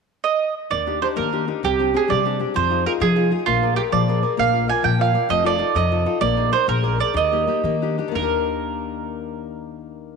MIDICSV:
0, 0, Header, 1, 4, 480
1, 0, Start_track
1, 0, Key_signature, -3, "major"
1, 0, Tempo, 306122
1, 1118, Time_signature, 6, 3, 24, 8
1, 10708, Tempo, 325910
1, 12148, Tempo, 343643
1, 15439, End_track
2, 0, Start_track
2, 0, Title_t, "Mandolin"
2, 0, Program_c, 0, 25
2, 375, Note_on_c, 0, 75, 67
2, 839, Note_off_c, 0, 75, 0
2, 1109, Note_on_c, 0, 74, 67
2, 1575, Note_off_c, 0, 74, 0
2, 1601, Note_on_c, 0, 72, 59
2, 1679, Note_off_c, 0, 72, 0
2, 1831, Note_on_c, 0, 70, 62
2, 2296, Note_off_c, 0, 70, 0
2, 2580, Note_on_c, 0, 67, 75
2, 3031, Note_off_c, 0, 67, 0
2, 3081, Note_on_c, 0, 68, 64
2, 3287, Note_off_c, 0, 68, 0
2, 3291, Note_on_c, 0, 74, 69
2, 3742, Note_off_c, 0, 74, 0
2, 4012, Note_on_c, 0, 72, 86
2, 4458, Note_off_c, 0, 72, 0
2, 4491, Note_on_c, 0, 70, 78
2, 4569, Note_off_c, 0, 70, 0
2, 4728, Note_on_c, 0, 68, 79
2, 5175, Note_off_c, 0, 68, 0
2, 5426, Note_on_c, 0, 65, 78
2, 5883, Note_off_c, 0, 65, 0
2, 5901, Note_on_c, 0, 67, 74
2, 5979, Note_off_c, 0, 67, 0
2, 6153, Note_on_c, 0, 74, 68
2, 6611, Note_off_c, 0, 74, 0
2, 6890, Note_on_c, 0, 77, 74
2, 7340, Note_off_c, 0, 77, 0
2, 7361, Note_on_c, 0, 80, 69
2, 7580, Note_off_c, 0, 80, 0
2, 7590, Note_on_c, 0, 79, 68
2, 7831, Note_off_c, 0, 79, 0
2, 7858, Note_on_c, 0, 77, 60
2, 8283, Note_off_c, 0, 77, 0
2, 8312, Note_on_c, 0, 75, 89
2, 8547, Note_off_c, 0, 75, 0
2, 8567, Note_on_c, 0, 74, 83
2, 9026, Note_off_c, 0, 74, 0
2, 9032, Note_on_c, 0, 75, 75
2, 9694, Note_off_c, 0, 75, 0
2, 9737, Note_on_c, 0, 74, 91
2, 10229, Note_off_c, 0, 74, 0
2, 10235, Note_on_c, 0, 72, 78
2, 10449, Note_off_c, 0, 72, 0
2, 10486, Note_on_c, 0, 70, 74
2, 10925, Note_off_c, 0, 70, 0
2, 10967, Note_on_c, 0, 74, 72
2, 11169, Note_off_c, 0, 74, 0
2, 11206, Note_on_c, 0, 75, 73
2, 12352, Note_off_c, 0, 75, 0
2, 12634, Note_on_c, 0, 70, 65
2, 15439, Note_off_c, 0, 70, 0
2, 15439, End_track
3, 0, Start_track
3, 0, Title_t, "Nylon-string guitar"
3, 0, Program_c, 1, 24
3, 1103, Note_on_c, 1, 51, 51
3, 1359, Note_on_c, 1, 62, 33
3, 1364, Note_on_c, 1, 63, 27
3, 1372, Note_on_c, 1, 67, 41
3, 1579, Note_off_c, 1, 62, 0
3, 1582, Note_off_c, 1, 63, 0
3, 1585, Note_off_c, 1, 67, 0
3, 1591, Note_off_c, 1, 51, 0
3, 1594, Note_on_c, 1, 62, 43
3, 1604, Note_on_c, 1, 67, 41
3, 1605, Note_on_c, 1, 63, 38
3, 1818, Note_on_c, 1, 58, 55
3, 1997, Note_off_c, 1, 62, 0
3, 1999, Note_off_c, 1, 63, 0
3, 2001, Note_off_c, 1, 67, 0
3, 2079, Note_on_c, 1, 62, 37
3, 2081, Note_on_c, 1, 63, 37
3, 2092, Note_on_c, 1, 67, 43
3, 2292, Note_off_c, 1, 62, 0
3, 2299, Note_off_c, 1, 67, 0
3, 2300, Note_off_c, 1, 63, 0
3, 2309, Note_off_c, 1, 58, 0
3, 2311, Note_on_c, 1, 62, 36
3, 2318, Note_on_c, 1, 63, 37
3, 2321, Note_on_c, 1, 67, 39
3, 2509, Note_off_c, 1, 62, 0
3, 2513, Note_off_c, 1, 67, 0
3, 2514, Note_off_c, 1, 63, 0
3, 2555, Note_on_c, 1, 48, 54
3, 2805, Note_on_c, 1, 60, 43
3, 2813, Note_on_c, 1, 62, 34
3, 2822, Note_on_c, 1, 67, 43
3, 3019, Note_off_c, 1, 60, 0
3, 3027, Note_off_c, 1, 62, 0
3, 3031, Note_off_c, 1, 67, 0
3, 3037, Note_on_c, 1, 60, 37
3, 3038, Note_off_c, 1, 48, 0
3, 3045, Note_on_c, 1, 62, 34
3, 3051, Note_on_c, 1, 67, 46
3, 3263, Note_on_c, 1, 55, 54
3, 3436, Note_off_c, 1, 60, 0
3, 3441, Note_off_c, 1, 62, 0
3, 3443, Note_off_c, 1, 67, 0
3, 3530, Note_on_c, 1, 60, 41
3, 3537, Note_on_c, 1, 67, 44
3, 3538, Note_on_c, 1, 62, 37
3, 3736, Note_off_c, 1, 60, 0
3, 3737, Note_off_c, 1, 62, 0
3, 3747, Note_off_c, 1, 55, 0
3, 3751, Note_off_c, 1, 67, 0
3, 3753, Note_on_c, 1, 60, 42
3, 3760, Note_on_c, 1, 62, 33
3, 3769, Note_on_c, 1, 67, 43
3, 3947, Note_off_c, 1, 60, 0
3, 3948, Note_off_c, 1, 62, 0
3, 3956, Note_off_c, 1, 67, 0
3, 3985, Note_on_c, 1, 53, 59
3, 4236, Note_on_c, 1, 63, 39
3, 4241, Note_on_c, 1, 65, 39
3, 4252, Note_on_c, 1, 68, 40
3, 4462, Note_off_c, 1, 63, 0
3, 4464, Note_off_c, 1, 53, 0
3, 4464, Note_off_c, 1, 65, 0
3, 4470, Note_off_c, 1, 68, 0
3, 4480, Note_on_c, 1, 63, 45
3, 4486, Note_on_c, 1, 65, 37
3, 4489, Note_on_c, 1, 68, 47
3, 4705, Note_on_c, 1, 48, 55
3, 4872, Note_off_c, 1, 63, 0
3, 4873, Note_off_c, 1, 65, 0
3, 4877, Note_off_c, 1, 68, 0
3, 4946, Note_on_c, 1, 63, 42
3, 4956, Note_on_c, 1, 65, 43
3, 4960, Note_on_c, 1, 68, 51
3, 5170, Note_off_c, 1, 63, 0
3, 5175, Note_off_c, 1, 65, 0
3, 5182, Note_off_c, 1, 48, 0
3, 5182, Note_off_c, 1, 68, 0
3, 5184, Note_on_c, 1, 63, 39
3, 5200, Note_on_c, 1, 65, 31
3, 5201, Note_on_c, 1, 68, 48
3, 5379, Note_off_c, 1, 63, 0
3, 5382, Note_off_c, 1, 65, 0
3, 5387, Note_off_c, 1, 68, 0
3, 5434, Note_on_c, 1, 58, 57
3, 5682, Note_on_c, 1, 68, 33
3, 5696, Note_on_c, 1, 70, 30
3, 5697, Note_on_c, 1, 74, 43
3, 5884, Note_off_c, 1, 68, 0
3, 5893, Note_off_c, 1, 70, 0
3, 5898, Note_off_c, 1, 74, 0
3, 5903, Note_on_c, 1, 68, 39
3, 5907, Note_off_c, 1, 58, 0
3, 5911, Note_on_c, 1, 70, 41
3, 5921, Note_on_c, 1, 74, 45
3, 6147, Note_on_c, 1, 53, 58
3, 6303, Note_off_c, 1, 68, 0
3, 6309, Note_off_c, 1, 70, 0
3, 6312, Note_off_c, 1, 74, 0
3, 6397, Note_on_c, 1, 68, 38
3, 6408, Note_on_c, 1, 70, 34
3, 6415, Note_on_c, 1, 74, 46
3, 6605, Note_off_c, 1, 68, 0
3, 6606, Note_off_c, 1, 70, 0
3, 6610, Note_off_c, 1, 74, 0
3, 6623, Note_on_c, 1, 68, 35
3, 6626, Note_on_c, 1, 70, 34
3, 6628, Note_off_c, 1, 53, 0
3, 6631, Note_on_c, 1, 74, 42
3, 6820, Note_off_c, 1, 68, 0
3, 6821, Note_off_c, 1, 70, 0
3, 6823, Note_off_c, 1, 74, 0
3, 6856, Note_on_c, 1, 58, 55
3, 7104, Note_on_c, 1, 65, 37
3, 7110, Note_on_c, 1, 70, 34
3, 7114, Note_on_c, 1, 74, 39
3, 7316, Note_off_c, 1, 65, 0
3, 7323, Note_off_c, 1, 70, 0
3, 7328, Note_off_c, 1, 74, 0
3, 7335, Note_on_c, 1, 65, 41
3, 7338, Note_on_c, 1, 70, 39
3, 7342, Note_off_c, 1, 58, 0
3, 7351, Note_on_c, 1, 74, 44
3, 7568, Note_on_c, 1, 53, 52
3, 7736, Note_off_c, 1, 65, 0
3, 7740, Note_off_c, 1, 70, 0
3, 7743, Note_off_c, 1, 74, 0
3, 7818, Note_on_c, 1, 65, 45
3, 7829, Note_on_c, 1, 70, 39
3, 7831, Note_on_c, 1, 74, 44
3, 8038, Note_off_c, 1, 65, 0
3, 8043, Note_off_c, 1, 70, 0
3, 8053, Note_off_c, 1, 53, 0
3, 8053, Note_off_c, 1, 74, 0
3, 8055, Note_on_c, 1, 65, 38
3, 8065, Note_on_c, 1, 70, 35
3, 8072, Note_on_c, 1, 74, 44
3, 8251, Note_off_c, 1, 65, 0
3, 8254, Note_off_c, 1, 70, 0
3, 8260, Note_off_c, 1, 74, 0
3, 8292, Note_on_c, 1, 53, 57
3, 8522, Note_on_c, 1, 63, 36
3, 8529, Note_on_c, 1, 65, 39
3, 8545, Note_on_c, 1, 69, 42
3, 8740, Note_off_c, 1, 63, 0
3, 8745, Note_off_c, 1, 65, 0
3, 8749, Note_off_c, 1, 69, 0
3, 8757, Note_on_c, 1, 63, 50
3, 8766, Note_on_c, 1, 65, 40
3, 8767, Note_on_c, 1, 69, 47
3, 8770, Note_off_c, 1, 53, 0
3, 9008, Note_on_c, 1, 48, 52
3, 9161, Note_off_c, 1, 63, 0
3, 9163, Note_off_c, 1, 65, 0
3, 9166, Note_off_c, 1, 69, 0
3, 9277, Note_on_c, 1, 63, 37
3, 9279, Note_on_c, 1, 65, 40
3, 9280, Note_on_c, 1, 69, 45
3, 9477, Note_off_c, 1, 63, 0
3, 9479, Note_off_c, 1, 65, 0
3, 9486, Note_off_c, 1, 48, 0
3, 9488, Note_off_c, 1, 69, 0
3, 9495, Note_on_c, 1, 63, 37
3, 9504, Note_on_c, 1, 65, 38
3, 9507, Note_on_c, 1, 69, 45
3, 9686, Note_off_c, 1, 63, 0
3, 9687, Note_off_c, 1, 65, 0
3, 9693, Note_off_c, 1, 69, 0
3, 9731, Note_on_c, 1, 58, 64
3, 9984, Note_on_c, 1, 63, 42
3, 9994, Note_on_c, 1, 68, 37
3, 9996, Note_on_c, 1, 70, 44
3, 10198, Note_off_c, 1, 68, 0
3, 10202, Note_off_c, 1, 63, 0
3, 10208, Note_off_c, 1, 58, 0
3, 10209, Note_off_c, 1, 70, 0
3, 10220, Note_on_c, 1, 63, 48
3, 10222, Note_on_c, 1, 68, 38
3, 10228, Note_on_c, 1, 70, 45
3, 10409, Note_off_c, 1, 68, 0
3, 10411, Note_off_c, 1, 63, 0
3, 10415, Note_off_c, 1, 70, 0
3, 10455, Note_on_c, 1, 58, 51
3, 10706, Note_on_c, 1, 68, 39
3, 10714, Note_on_c, 1, 70, 35
3, 10721, Note_on_c, 1, 74, 52
3, 10919, Note_off_c, 1, 68, 0
3, 10926, Note_off_c, 1, 70, 0
3, 10929, Note_off_c, 1, 58, 0
3, 10937, Note_on_c, 1, 68, 37
3, 10938, Note_off_c, 1, 74, 0
3, 10944, Note_on_c, 1, 70, 34
3, 10955, Note_on_c, 1, 74, 45
3, 11122, Note_off_c, 1, 68, 0
3, 11127, Note_off_c, 1, 70, 0
3, 11134, Note_off_c, 1, 74, 0
3, 11164, Note_on_c, 1, 51, 60
3, 11428, Note_on_c, 1, 58, 40
3, 11437, Note_on_c, 1, 63, 38
3, 11445, Note_on_c, 1, 67, 41
3, 11639, Note_off_c, 1, 58, 0
3, 11641, Note_off_c, 1, 51, 0
3, 11646, Note_off_c, 1, 63, 0
3, 11655, Note_off_c, 1, 67, 0
3, 11657, Note_on_c, 1, 58, 43
3, 11664, Note_on_c, 1, 63, 37
3, 11672, Note_on_c, 1, 67, 47
3, 11892, Note_off_c, 1, 58, 0
3, 11910, Note_on_c, 1, 58, 59
3, 12063, Note_off_c, 1, 63, 0
3, 12068, Note_off_c, 1, 67, 0
3, 12164, Note_on_c, 1, 62, 33
3, 12170, Note_on_c, 1, 63, 31
3, 12179, Note_on_c, 1, 67, 45
3, 12373, Note_off_c, 1, 62, 0
3, 12378, Note_off_c, 1, 63, 0
3, 12384, Note_off_c, 1, 58, 0
3, 12387, Note_off_c, 1, 67, 0
3, 12388, Note_on_c, 1, 62, 36
3, 12397, Note_on_c, 1, 63, 34
3, 12404, Note_on_c, 1, 67, 41
3, 12530, Note_on_c, 1, 51, 46
3, 12578, Note_on_c, 1, 58, 41
3, 12579, Note_off_c, 1, 62, 0
3, 12582, Note_off_c, 1, 63, 0
3, 12588, Note_off_c, 1, 67, 0
3, 12624, Note_on_c, 1, 62, 42
3, 12673, Note_on_c, 1, 63, 38
3, 12729, Note_on_c, 1, 67, 44
3, 15439, Note_off_c, 1, 51, 0
3, 15439, Note_off_c, 1, 58, 0
3, 15439, Note_off_c, 1, 62, 0
3, 15439, Note_off_c, 1, 63, 0
3, 15439, Note_off_c, 1, 67, 0
3, 15439, End_track
4, 0, Start_track
4, 0, Title_t, "Upright bass"
4, 0, Program_c, 2, 32
4, 1119, Note_on_c, 2, 39, 60
4, 1593, Note_off_c, 2, 39, 0
4, 1852, Note_on_c, 2, 51, 67
4, 2321, Note_off_c, 2, 51, 0
4, 2569, Note_on_c, 2, 36, 73
4, 3038, Note_off_c, 2, 36, 0
4, 3310, Note_on_c, 2, 48, 72
4, 3768, Note_off_c, 2, 48, 0
4, 4019, Note_on_c, 2, 41, 74
4, 4479, Note_off_c, 2, 41, 0
4, 4721, Note_on_c, 2, 53, 90
4, 5186, Note_off_c, 2, 53, 0
4, 5437, Note_on_c, 2, 34, 67
4, 5904, Note_off_c, 2, 34, 0
4, 6158, Note_on_c, 2, 46, 73
4, 6628, Note_off_c, 2, 46, 0
4, 6877, Note_on_c, 2, 34, 68
4, 7346, Note_off_c, 2, 34, 0
4, 7599, Note_on_c, 2, 46, 76
4, 8063, Note_off_c, 2, 46, 0
4, 8315, Note_on_c, 2, 29, 63
4, 8778, Note_off_c, 2, 29, 0
4, 9018, Note_on_c, 2, 41, 79
4, 9485, Note_off_c, 2, 41, 0
4, 9737, Note_on_c, 2, 34, 78
4, 10207, Note_off_c, 2, 34, 0
4, 10469, Note_on_c, 2, 34, 76
4, 10934, Note_off_c, 2, 34, 0
4, 11170, Note_on_c, 2, 39, 76
4, 11642, Note_off_c, 2, 39, 0
4, 11895, Note_on_c, 2, 51, 72
4, 12375, Note_off_c, 2, 51, 0
4, 12626, Note_on_c, 2, 39, 64
4, 15439, Note_off_c, 2, 39, 0
4, 15439, End_track
0, 0, End_of_file